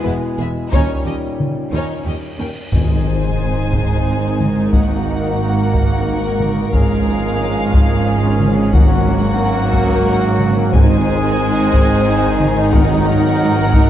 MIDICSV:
0, 0, Header, 1, 13, 480
1, 0, Start_track
1, 0, Tempo, 666667
1, 523, Time_signature, 6, 3, 24, 8
1, 10007, End_track
2, 0, Start_track
2, 0, Title_t, "Violin section"
2, 0, Program_c, 0, 48
2, 28, Note_on_c, 0, 71, 59
2, 85, Note_off_c, 0, 71, 0
2, 290, Note_on_c, 0, 76, 56
2, 348, Note_off_c, 0, 76, 0
2, 525, Note_on_c, 0, 73, 69
2, 747, Note_off_c, 0, 73, 0
2, 765, Note_on_c, 0, 75, 49
2, 822, Note_off_c, 0, 75, 0
2, 1251, Note_on_c, 0, 73, 57
2, 1471, Note_off_c, 0, 73, 0
2, 1495, Note_on_c, 0, 75, 48
2, 1552, Note_off_c, 0, 75, 0
2, 1729, Note_on_c, 0, 79, 57
2, 1787, Note_off_c, 0, 79, 0
2, 1972, Note_on_c, 0, 80, 65
2, 3381, Note_off_c, 0, 80, 0
2, 3408, Note_on_c, 0, 78, 71
2, 4819, Note_off_c, 0, 78, 0
2, 4851, Note_on_c, 0, 77, 80
2, 6260, Note_off_c, 0, 77, 0
2, 6281, Note_on_c, 0, 78, 88
2, 7694, Note_off_c, 0, 78, 0
2, 7732, Note_on_c, 0, 80, 93
2, 9138, Note_off_c, 0, 80, 0
2, 9159, Note_on_c, 0, 78, 89
2, 10007, Note_off_c, 0, 78, 0
2, 10007, End_track
3, 0, Start_track
3, 0, Title_t, "Violin section"
3, 0, Program_c, 1, 48
3, 28, Note_on_c, 1, 64, 54
3, 85, Note_off_c, 1, 64, 0
3, 269, Note_on_c, 1, 68, 57
3, 327, Note_off_c, 1, 68, 0
3, 511, Note_on_c, 1, 63, 64
3, 740, Note_off_c, 1, 63, 0
3, 762, Note_on_c, 1, 67, 46
3, 819, Note_off_c, 1, 67, 0
3, 1241, Note_on_c, 1, 63, 57
3, 1466, Note_off_c, 1, 63, 0
3, 1473, Note_on_c, 1, 67, 45
3, 1530, Note_off_c, 1, 67, 0
3, 1720, Note_on_c, 1, 70, 51
3, 1777, Note_off_c, 1, 70, 0
3, 1977, Note_on_c, 1, 72, 66
3, 3384, Note_off_c, 1, 72, 0
3, 3403, Note_on_c, 1, 70, 74
3, 6256, Note_off_c, 1, 70, 0
3, 6291, Note_on_c, 1, 70, 82
3, 7699, Note_off_c, 1, 70, 0
3, 7729, Note_on_c, 1, 72, 96
3, 9136, Note_off_c, 1, 72, 0
3, 9163, Note_on_c, 1, 70, 97
3, 10007, Note_off_c, 1, 70, 0
3, 10007, End_track
4, 0, Start_track
4, 0, Title_t, "Trumpet section"
4, 0, Program_c, 2, 61
4, 1962, Note_on_c, 2, 68, 68
4, 3377, Note_off_c, 2, 68, 0
4, 3414, Note_on_c, 2, 66, 66
4, 4822, Note_off_c, 2, 66, 0
4, 4848, Note_on_c, 2, 68, 74
4, 6259, Note_off_c, 2, 68, 0
4, 6287, Note_on_c, 2, 66, 95
4, 7600, Note_off_c, 2, 66, 0
4, 7723, Note_on_c, 2, 68, 96
4, 9133, Note_off_c, 2, 68, 0
4, 9163, Note_on_c, 2, 70, 97
4, 10007, Note_off_c, 2, 70, 0
4, 10007, End_track
5, 0, Start_track
5, 0, Title_t, "Viola section"
5, 0, Program_c, 3, 48
5, 41, Note_on_c, 3, 59, 62
5, 98, Note_off_c, 3, 59, 0
5, 278, Note_on_c, 3, 59, 58
5, 336, Note_off_c, 3, 59, 0
5, 527, Note_on_c, 3, 61, 74
5, 749, Note_off_c, 3, 61, 0
5, 768, Note_on_c, 3, 61, 49
5, 825, Note_off_c, 3, 61, 0
5, 1246, Note_on_c, 3, 61, 61
5, 1469, Note_off_c, 3, 61, 0
5, 1487, Note_on_c, 3, 61, 46
5, 1544, Note_off_c, 3, 61, 0
5, 1714, Note_on_c, 3, 61, 52
5, 1772, Note_off_c, 3, 61, 0
5, 1954, Note_on_c, 3, 63, 67
5, 4813, Note_off_c, 3, 63, 0
5, 4846, Note_on_c, 3, 61, 81
5, 7696, Note_off_c, 3, 61, 0
5, 7728, Note_on_c, 3, 63, 103
5, 10007, Note_off_c, 3, 63, 0
5, 10007, End_track
6, 0, Start_track
6, 0, Title_t, "French horn section"
6, 0, Program_c, 4, 60
6, 0, Note_on_c, 4, 59, 71
6, 0, Note_on_c, 4, 64, 78
6, 486, Note_off_c, 4, 59, 0
6, 515, Note_off_c, 4, 64, 0
6, 520, Note_on_c, 4, 63, 63
6, 523, Note_on_c, 4, 61, 67
6, 1709, Note_off_c, 4, 63, 0
6, 1735, Note_off_c, 4, 61, 0
6, 1940, Note_on_c, 4, 63, 66
6, 1950, Note_on_c, 4, 60, 66
6, 3370, Note_off_c, 4, 60, 0
6, 3382, Note_on_c, 4, 58, 79
6, 4806, Note_off_c, 4, 63, 0
6, 4850, Note_on_c, 4, 61, 88
6, 6246, Note_off_c, 4, 58, 0
6, 6288, Note_on_c, 4, 58, 101
6, 7698, Note_off_c, 4, 58, 0
6, 7698, Note_off_c, 4, 61, 0
6, 7723, Note_on_c, 4, 60, 103
6, 7726, Note_on_c, 4, 63, 106
6, 9045, Note_off_c, 4, 60, 0
6, 9167, Note_on_c, 4, 58, 103
6, 10007, Note_off_c, 4, 58, 0
6, 10007, Note_off_c, 4, 63, 0
6, 10007, End_track
7, 0, Start_track
7, 0, Title_t, "Trombone section"
7, 0, Program_c, 5, 61
7, 0, Note_on_c, 5, 47, 81
7, 0, Note_on_c, 5, 56, 78
7, 497, Note_off_c, 5, 47, 0
7, 525, Note_on_c, 5, 46, 63
7, 528, Note_off_c, 5, 56, 0
7, 530, Note_on_c, 5, 55, 60
7, 1714, Note_off_c, 5, 55, 0
7, 1736, Note_off_c, 5, 46, 0
7, 1966, Note_on_c, 5, 51, 73
7, 1969, Note_on_c, 5, 56, 71
7, 3380, Note_off_c, 5, 56, 0
7, 3394, Note_on_c, 5, 58, 78
7, 4812, Note_off_c, 5, 58, 0
7, 4819, Note_off_c, 5, 51, 0
7, 4840, Note_on_c, 5, 53, 83
7, 4846, Note_on_c, 5, 56, 84
7, 6255, Note_off_c, 5, 53, 0
7, 6286, Note_off_c, 5, 56, 0
7, 6286, Note_on_c, 5, 58, 104
7, 6295, Note_on_c, 5, 54, 97
7, 7696, Note_off_c, 5, 58, 0
7, 7701, Note_off_c, 5, 54, 0
7, 7733, Note_on_c, 5, 51, 106
7, 7733, Note_on_c, 5, 56, 107
7, 9051, Note_off_c, 5, 56, 0
7, 9173, Note_on_c, 5, 54, 94
7, 10007, Note_off_c, 5, 51, 0
7, 10007, Note_off_c, 5, 54, 0
7, 10007, End_track
8, 0, Start_track
8, 0, Title_t, "Timpani"
8, 0, Program_c, 6, 47
8, 1963, Note_on_c, 6, 44, 94
8, 2656, Note_off_c, 6, 44, 0
8, 6287, Note_on_c, 6, 44, 103
8, 6978, Note_off_c, 6, 44, 0
8, 7723, Note_on_c, 6, 44, 109
8, 8414, Note_off_c, 6, 44, 0
8, 9165, Note_on_c, 6, 44, 112
8, 9854, Note_off_c, 6, 44, 0
8, 10007, End_track
9, 0, Start_track
9, 0, Title_t, "Cello section"
9, 0, Program_c, 7, 48
9, 47, Note_on_c, 7, 40, 57
9, 104, Note_off_c, 7, 40, 0
9, 282, Note_on_c, 7, 40, 54
9, 339, Note_off_c, 7, 40, 0
9, 528, Note_on_c, 7, 39, 70
9, 586, Note_off_c, 7, 39, 0
9, 764, Note_on_c, 7, 39, 51
9, 822, Note_off_c, 7, 39, 0
9, 1243, Note_on_c, 7, 39, 72
9, 1300, Note_off_c, 7, 39, 0
9, 1484, Note_on_c, 7, 39, 51
9, 1542, Note_off_c, 7, 39, 0
9, 1722, Note_on_c, 7, 39, 47
9, 1779, Note_off_c, 7, 39, 0
9, 1963, Note_on_c, 7, 44, 72
9, 4818, Note_off_c, 7, 44, 0
9, 4844, Note_on_c, 7, 44, 88
9, 7695, Note_off_c, 7, 44, 0
9, 7725, Note_on_c, 7, 44, 100
9, 10007, Note_off_c, 7, 44, 0
9, 10007, End_track
10, 0, Start_track
10, 0, Title_t, "Double bass section"
10, 0, Program_c, 8, 48
10, 38, Note_on_c, 8, 28, 56
10, 95, Note_off_c, 8, 28, 0
10, 278, Note_on_c, 8, 28, 54
10, 336, Note_off_c, 8, 28, 0
10, 514, Note_on_c, 8, 39, 68
10, 572, Note_off_c, 8, 39, 0
10, 759, Note_on_c, 8, 39, 51
10, 817, Note_off_c, 8, 39, 0
10, 1235, Note_on_c, 8, 39, 71
10, 1292, Note_off_c, 8, 39, 0
10, 1471, Note_on_c, 8, 39, 49
10, 1529, Note_off_c, 8, 39, 0
10, 1716, Note_on_c, 8, 39, 47
10, 1774, Note_off_c, 8, 39, 0
10, 1955, Note_on_c, 8, 32, 71
10, 4814, Note_off_c, 8, 32, 0
10, 4846, Note_on_c, 8, 32, 80
10, 7696, Note_off_c, 8, 32, 0
10, 7722, Note_on_c, 8, 32, 97
10, 10007, Note_off_c, 8, 32, 0
10, 10007, End_track
11, 0, Start_track
11, 0, Title_t, "Cymbal swell"
11, 0, Program_c, 10, 119
11, 520, Note_on_c, 10, 60, 54
11, 1964, Note_off_c, 10, 60, 0
11, 10007, End_track
12, 0, Start_track
12, 0, Title_t, "Sub drop"
12, 0, Program_c, 11, 103
12, 1960, Note_on_c, 11, 60, 76
12, 3404, Note_off_c, 11, 60, 0
12, 10007, End_track
13, 0, Start_track
13, 0, Title_t, "Taiko and cinematic ensemble drums"
13, 529, Note_on_c, 9, 41, 85
13, 601, Note_off_c, 9, 41, 0
13, 1007, Note_on_c, 9, 47, 54
13, 1079, Note_off_c, 9, 47, 0
13, 1963, Note_on_c, 9, 41, 88
13, 2035, Note_off_c, 9, 41, 0
13, 2686, Note_on_c, 9, 41, 88
13, 2758, Note_off_c, 9, 41, 0
13, 3168, Note_on_c, 9, 47, 54
13, 3240, Note_off_c, 9, 47, 0
13, 3405, Note_on_c, 9, 41, 95
13, 3477, Note_off_c, 9, 41, 0
13, 4128, Note_on_c, 9, 41, 84
13, 4200, Note_off_c, 9, 41, 0
13, 4607, Note_on_c, 9, 47, 54
13, 4679, Note_off_c, 9, 47, 0
13, 4844, Note_on_c, 9, 41, 90
13, 4916, Note_off_c, 9, 41, 0
13, 5568, Note_on_c, 9, 41, 88
13, 5640, Note_off_c, 9, 41, 0
13, 6050, Note_on_c, 9, 47, 56
13, 6122, Note_off_c, 9, 47, 0
13, 6287, Note_on_c, 9, 41, 99
13, 6359, Note_off_c, 9, 41, 0
13, 7006, Note_on_c, 9, 41, 90
13, 7078, Note_off_c, 9, 41, 0
13, 7483, Note_on_c, 9, 47, 59
13, 7555, Note_off_c, 9, 47, 0
13, 7725, Note_on_c, 9, 41, 109
13, 7797, Note_off_c, 9, 41, 0
13, 8447, Note_on_c, 9, 41, 92
13, 8519, Note_off_c, 9, 41, 0
13, 8926, Note_on_c, 9, 47, 57
13, 8998, Note_off_c, 9, 47, 0
13, 9165, Note_on_c, 9, 41, 111
13, 9237, Note_off_c, 9, 41, 0
13, 9886, Note_on_c, 9, 41, 91
13, 9958, Note_off_c, 9, 41, 0
13, 10007, End_track
0, 0, End_of_file